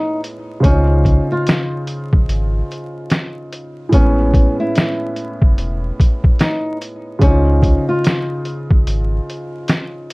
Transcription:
0.00 0.59 A2 medium
0.00 0.60 G#3 medium
0.00 0.62 B3 medium
0.00 0.63 C#4 medium
0.00 0.20 D#4 medium
0.24 closed hi-hat medium
0.60 1.19 C#2 loud
0.60 3.87 C#3 medium
0.60 3.88 C5 medium
0.60 kick medium
0.60 closed hi-hat medium
0.65 1.27 C#4 medium
0.65 3.89 D#4 medium
0.65 3.91 F4 medium
1.05 kick medium
1.05 closed hi-hat soft
1.32 2.50 F4 medium
1.47 snare loud
1.47 closed hi-hat medium
1.87 closed hi-hat medium
2.13 2.26 A#1 medium
2.13 kick medium
2.29 2.62 G#1 medium
2.29 closed hi-hat medium
2.72 closed hi-hat medium
3.10 snare loud
3.10 closed hi-hat medium
3.53 closed hi-hat medium
3.89 4.47 A1 loud
3.89 7.16 A2 medium
3.89 7.17 G#3 soft
3.89 kick loud
3.89 closed hi-hat medium
3.94 7.18 B3 medium
3.94 4.56 C#4 medium
3.94 7.19 C#4 medium
4.34 kick medium
4.34 closed hi-hat medium
4.60 5.79 E4 medium
4.75 snare loud
4.75 closed hi-hat medium
5.16 closed hi-hat medium
5.42 5.55 F#1 medium
5.42 kick medium
5.58 5.91 E1 loud
5.58 closed hi-hat medium
6.00 kick medium
6.00 closed hi-hat medium
6.24 kick medium
6.39 6.77 D#4 medium
6.39 snare loud
6.39 closed hi-hat medium
6.82 closed hi-hat medium
7.19 7.76 C#2 loud
7.19 10.13 C#3 medium
7.19 7.84 C#4 loud
7.19 10.13 C5 medium
7.19 kick loud
7.19 closed hi-hat medium
7.24 10.13 D#4 medium
7.24 10.13 F4 medium
7.63 kick medium
7.63 closed hi-hat medium
7.89 9.08 F4 medium
8.04 snare loud
8.04 closed hi-hat loud
8.45 closed hi-hat medium
8.71 8.83 A#1 medium
8.71 kick loud
8.86 9.20 G#1 medium
8.86 closed hi-hat medium
9.30 closed hi-hat medium
9.68 snare loud
9.68 closed hi-hat medium

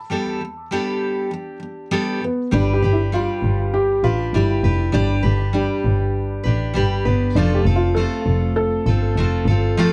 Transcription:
0.00 1.88 A5 medium
0.10 0.40 G3 medium
0.10 0.41 B3 medium
0.10 0.42 D4 medium
0.10 0.42 G4 medium
0.10 0.42 A4 medium
0.41 0.65 G3 soft
0.71 1.31 G3 medium
0.71 1.33 B3 medium
0.71 1.91 D4 medium
0.71 1.92 G4 medium
0.71 1.33 A4 medium
1.31 1.56 G3 medium
1.31 1.57 B3 medium
1.60 1.85 G3 soft
1.60 1.87 B3 medium
1.91 2.20 G3 medium
1.91 2.22 B3 medium
1.91 2.22 D4 medium
1.91 2.23 G4 medium
1.91 2.23 A4 medium
2.21 2.46 G3 soft
2.21 2.48 B3 medium
2.21 2.55 B3 medium
2.51 2.78 G1 loud
2.51 2.82 G3 medium
2.51 2.83 D4 medium
2.51 2.74 D4 medium
2.51 2.83 G4 medium
2.51 2.81 B4 medium
2.74 2.94 G4 medium
2.82 3.20 G1 medium
2.82 3.12 D4 soft
2.82 3.13 G4 soft
2.82 3.13 B4 medium
2.93 2.98 E4 medium
3.12 4.03 G3 medium
3.12 4.04 D4 medium
3.12 3.76 F4 medium
3.12 4.04 G4 medium
3.12 4.02 B4 medium
3.43 4.03 G1 medium
3.74 4.05 G4 loud
4.04 4.28 A1 medium
4.04 4.34 D4 soft
4.04 4.35 F4 loud
4.04 4.35 G4 soft
4.04 4.34 B4 medium
4.34 4.59 G1 medium
4.34 4.64 G3 medium
4.34 4.65 D4 medium
4.34 4.96 E4 medium
4.34 4.64 G4 medium
4.34 4.63 B4 medium
4.64 4.89 F1 medium
4.64 4.92 D4 soft
4.64 4.93 G4 soft
4.64 4.93 B4 medium
4.92 5.19 G1 loud
4.92 5.23 G3 medium
4.92 5.24 D4 medium
4.92 5.53 D4 loud
4.92 5.24 G4 medium
4.92 5.21 B4 medium
5.23 5.62 G1 loud
5.23 5.53 D4 soft
5.23 5.53 G4 soft
5.23 5.54 B4 medium
5.53 6.44 G3 medium
5.53 6.45 D4 medium
5.53 6.71 D4 medium
5.53 6.44 G4 medium
5.53 6.42 B4 medium
5.85 6.34 G1 medium
6.43 6.70 A1 medium
6.43 6.74 D4 medium
6.43 6.75 G4 medium
6.43 6.74 B4 medium
6.74 7.00 G1 medium
6.74 7.04 G3 medium
6.74 7.05 D4 medium
6.74 7.05 G4 medium
6.74 7.04 B4 medium
7.05 7.31 G1 medium
7.05 7.36 B3 medium
7.05 7.37 D4 soft
7.05 7.36 G4 soft
7.05 7.35 B4 soft
7.36 7.60 F1 loud
7.36 7.66 F3 medium
7.36 7.66 A3 medium
7.36 7.66 C4 medium
7.36 7.56 D4 loud
7.36 7.67 F4 medium
7.36 7.65 A4 medium
7.55 7.60 G4 medium
7.66 8.03 F1 loud
7.66 7.96 C4 soft
7.66 7.97 F4 soft
7.66 7.96 A4 medium
7.76 7.94 F4 medium
7.95 8.86 A3 medium
7.95 8.87 C4 medium
7.95 8.51 A4 loud
7.99 8.87 F4 medium
7.99 8.85 A4 medium
8.26 8.75 F1 loud
8.56 9.93 A4 loud
8.86 9.11 G1 medium
8.86 9.17 C4 soft
8.86 9.17 F4 soft
8.86 9.16 A4 medium
9.16 9.41 F1 medium
9.16 9.47 A3 medium
9.16 9.47 C4 medium
9.16 9.48 F4 medium
9.20 9.46 A4 medium
9.46 9.71 G1 medium
9.46 9.78 F4 medium
9.46 9.77 A4 medium
9.51 9.78 C4 medium
9.77 9.93 F3 medium
9.77 9.93 A3 medium
9.77 9.93 C4 medium
9.77 9.93 F4 medium
9.77 9.93 A4 medium

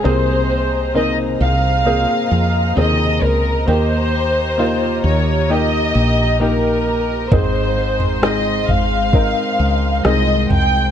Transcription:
0.00 3.64 G#4 medium
0.00 3.64 C5 soft
0.04 1.37 C2 medium
0.04 0.50 C3 medium
0.04 1.37 C3 medium
0.04 0.50 D#3 medium
0.04 0.91 A#3 medium
0.04 0.50 A#3 medium
0.04 0.91 C4 medium
0.04 0.49 C4 medium
0.04 0.91 G#4 medium
0.04 0.48 G#4 medium
0.04 0.96 C5 medium
0.04 10.91 D#5 medium
0.04 7.28 A#5 medium
0.49 0.94 A#3 soft
0.49 0.95 C4 soft
0.49 0.95 G#4 soft
0.95 1.86 C3 medium
0.95 1.85 D#3 medium
0.95 1.81 A#3 medium
0.95 1.86 A#3 medium
0.95 1.82 C4 soft
0.95 1.86 C4 medium
0.95 1.82 D#4 medium
0.95 1.87 G#4 medium
0.95 1.16 D#5 medium
1.41 2.05 C2 medium
1.41 2.74 F5 medium
1.85 2.32 D#3 soft
1.85 2.72 A#3 medium
1.85 2.31 A#3 soft
1.85 2.73 C4 soft
1.85 2.30 C4 soft
1.85 2.73 G#4 medium
1.85 2.29 G#4 soft
2.30 2.74 F2 medium
2.30 2.75 A#3 soft
2.30 2.76 C4 soft
2.30 2.75 G#4 soft
2.75 3.19 D#2 medium
2.75 3.22 C3 medium
2.75 3.22 D#3 medium
2.75 3.22 A#3 medium
2.75 3.64 A#3 soft
2.75 3.22 C4 medium
2.75 3.64 C4 soft
2.75 3.21 G#4 medium
2.75 3.64 G#4 medium
2.75 3.23 D#5 medium
3.21 3.64 C#2 medium
3.21 3.67 A#3 soft
3.21 3.68 C4 soft
3.21 3.68 G#4 soft
3.21 3.68 A#4 medium
3.67 5.00 D#2 medium
3.67 5.01 D#3 medium
3.67 4.14 D#3 soft
3.67 4.54 A#3 medium
3.67 4.14 A#3 medium
3.67 4.54 D#4 medium
3.67 4.13 D#4 medium
3.67 7.28 G4 soft
3.67 4.55 G4 medium
3.67 4.13 G4 medium
3.67 7.28 A#4 soft
3.67 5.01 C5 medium
4.14 4.58 A#3 soft
4.14 4.59 D#4 soft
4.14 4.59 G4 soft
4.58 5.49 D#3 medium
4.58 5.45 A#3 medium
4.58 5.49 A#3 medium
4.58 5.46 D#4 soft
4.58 5.50 D#4 medium
4.58 5.46 F4 medium
4.58 5.50 G4 medium
5.04 5.91 D#2 medium
5.04 5.51 C#5 medium
5.49 5.95 D#3 soft
5.49 6.36 A#3 medium
5.49 5.95 A#3 soft
5.49 6.36 D#4 soft
5.49 5.95 D#4 soft
5.49 6.37 G4 medium
5.49 5.93 G4 medium
5.49 6.42 D#5 medium
5.94 7.28 A#1 medium
5.94 6.39 A#3 soft
5.94 6.40 D#4 soft
5.94 6.40 G4 soft
6.40 6.86 D#3 medium
6.40 6.86 A#3 medium
6.40 7.27 A#3 medium
6.40 7.27 D#4 soft
6.40 6.87 D#4 medium
6.40 7.28 G4 medium
6.40 6.85 G4 medium
6.40 7.29 A#4 medium
6.86 7.32 A#3 soft
6.86 7.31 D#4 soft
6.86 7.32 G4 soft
7.31 8.64 G#1 medium
7.31 7.77 G#2 medium
7.31 8.65 G#2 soft
7.31 7.77 D#3 medium
7.31 7.77 G#3 soft
7.31 10.91 G#3 medium
7.31 8.18 C4 medium
7.31 7.76 C4 medium
7.31 7.76 D#4 medium
7.31 8.19 D#4 soft
7.31 7.75 G#4 medium
7.31 8.19 G#4 medium
7.31 8.23 C5 medium
7.31 10.91 C5 soft
7.31 10.91 C6 medium
7.31 kick medium
7.31 floor tom medium
7.76 8.20 G#3 soft
7.76 8.21 C4 soft
7.76 8.21 D#4 soft
7.76 8.22 G#4 soft
8.00 floor tom soft
8.22 9.13 G#2 medium
8.22 9.13 D#3 medium
8.22 9.12 G#3 medium
8.22 9.12 C4 medium
8.22 9.09 C4 soft
8.22 9.13 D#4 medium
8.22 9.10 D#4 soft
8.22 9.14 G#4 medium
8.22 9.10 G#4 medium
8.22 8.69 D#5 medium
8.22 cross-stick medium
8.68 9.32 G#1 medium
8.68 10.05 F5 medium
8.68 floor tom medium
9.13 9.59 G#3 soft
9.13 9.58 C4 soft
9.13 10.00 C4 medium
9.13 9.58 D#4 soft
9.13 10.01 D#4 medium
9.13 9.57 G#4 soft
9.13 10.01 A#4 medium
9.13 kick medium
9.58 10.02 C#2 medium
9.58 10.03 G#3 soft
9.58 10.04 C4 soft
9.58 10.04 D#4 soft
9.58 10.04 G#4 soft
10.04 10.47 C2 medium
10.04 10.50 G#2 medium
10.04 10.50 D#3 medium
10.04 10.50 G#3 medium
10.04 10.50 C4 medium
10.04 10.91 C4 soft
10.04 10.50 D#4 medium
10.04 10.91 D#4 soft
10.04 10.48 G#4 medium
10.04 10.91 G#4 medium
10.04 10.47 D#5 medium
10.04 cross-stick medium
10.49 10.91 C2 medium
10.49 10.91 G#3 soft
10.49 10.91 C4 soft
10.49 10.91 D#4 soft
10.49 10.91 G#4 soft
10.49 10.91 G5 medium
10.49 floor tom medium

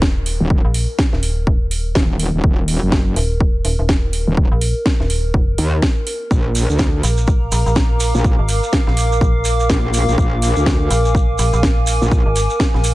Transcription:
0.00 0.38 D#1 loud
0.00 12.94 A#4 medium
0.00 kick loud
0.00 snare loud
0.00 downlifter medium
0.26 open hi-hat loud
0.40 0.62 D#1 loud
0.50 kick loud
0.65 0.86 A#1 loud
0.74 open hi-hat loud
0.99 kick loud
0.99 snare loud
1.13 1.45 D#1 loud
1.13 snare soft
1.23 open hi-hat loud
1.47 1.94 D#1 medium
1.47 kick loud
1.71 open hi-hat loud
1.95 2.32 D#1 medium
1.95 kick loud
1.95 snare loud
2.19 open hi-hat loud
2.34 2.42 D#1 loud
2.44 2.80 D#1 loud
2.44 kick loud
2.68 open hi-hat loud
2.82 3.15 F#1 medium
2.92 kick loud
2.92 snare loud
3.16 3.63 D#1 loud
3.16 open hi-hat loud
3.40 kick loud
3.65 3.77 D#1 loud
3.65 open hi-hat loud
3.79 4.25 D#1 loud
3.89 kick loud
3.89 snare loud
4.13 open hi-hat loud
4.27 4.49 D#1 loud
4.37 kick loud
4.52 4.74 A#1 loud
4.61 open hi-hat loud
4.86 kick loud
4.86 snare loud
5.00 5.33 D#1 loud
5.00 snare soft
5.10 open hi-hat loud
5.34 5.57 F1 loud
5.34 kick loud
5.58 5.81 D#2 loud
5.58 open hi-hat loud
5.82 kick loud
5.82 snare loud
6.07 open hi-hat loud
6.31 6.67 A#1 medium
6.31 kick loud
6.31 shekere soft
6.55 open hi-hat loud
6.55 shekere medium
6.68 7.02 D2 loud
6.68 12.94 F5 medium
6.68 10.11 A#5 medium
6.68 shekere medium
6.74 12.94 D6 loud
6.79 kick loud
6.79 snare loud
6.79 shekere soft
7.03 7.50 A#1 loud
7.03 open hi-hat loud
7.03 shekere medium
7.17 shekere soft
7.27 kick loud
7.27 shekere soft
7.52 7.64 A#1 loud
7.52 open hi-hat loud
7.52 shekere medium
7.66 8.12 A#1 loud
7.66 shekere soft
7.75 kick loud
7.75 snare loud
7.75 shekere soft
8.00 open hi-hat loud
8.00 shekere loud
8.15 8.37 A#1 loud
8.15 shekere medium
8.24 kick loud
8.24 shekere soft
8.39 8.61 G#1 loud
8.49 open hi-hat loud
8.49 shekere medium
8.63 shekere medium
8.73 kick loud
8.73 snare loud
8.73 shekere soft
8.87 9.20 A#1 medium
8.87 snare soft
8.97 open hi-hat loud
8.97 shekere medium
9.12 shekere soft
9.21 9.68 A#1 medium
9.21 kick loud
9.21 shekere soft
9.45 open hi-hat loud
9.45 shekere medium
9.60 shekere medium
9.69 10.06 A#1 medium
9.69 kick loud
9.69 snare loud
9.69 shekere soft
9.94 12.94 G#5 medium
9.94 open hi-hat loud
9.94 shekere loud
10.08 10.16 A#1 loud
10.08 shekere soft
10.18 10.54 A#1 loud
10.18 kick loud
10.18 shekere soft
10.42 open hi-hat loud
10.42 shekere medium
10.56 10.89 D2 loud
10.56 shekere soft
10.66 kick loud
10.66 snare loud
10.66 shekere soft
10.91 11.37 A#1 loud
10.91 open hi-hat loud
10.91 shekere medium
11.05 shekere soft
11.15 kick loud
11.15 shekere soft
11.38 11.51 A#1 loud
11.38 open hi-hat loud
11.38 shekere medium
11.53 11.99 A#1 loud
11.53 shekere medium
11.63 kick loud
11.63 snare loud
11.63 shekere soft
11.87 open hi-hat loud
11.87 shekere loud
12.02 12.24 A#1 medium
12.02 shekere medium
12.12 kick loud
12.12 shekere soft
12.26 12.48 G#1 loud
12.36 open hi-hat loud
12.36 shekere medium
12.50 shekere medium
12.60 kick loud
12.60 snare loud
12.60 shekere soft
12.74 12.94 A#1 loud
12.74 snare soft
12.84 open hi-hat loud
12.84 shekere loud

